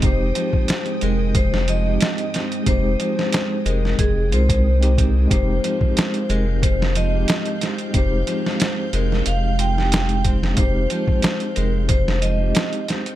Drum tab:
HH |x-x-xxx-x-x-xxxx|x-x-x-x-x-xx-xx-|x-x-xxx-x-x-xxxx|x-x-x-x-x-x-xxx-|
SD |----o----o--o-o-|---oo--o--------|----o----o--o-o-|---oo--o---oo--o|
BD |o--o----o-------|o-------o--o--o-|o--o----o-------|o-------------o-|

HH |x-x-xxx-x-x-xxxx|
SD |----o----o--o-o-|
BD |o--o----o-------|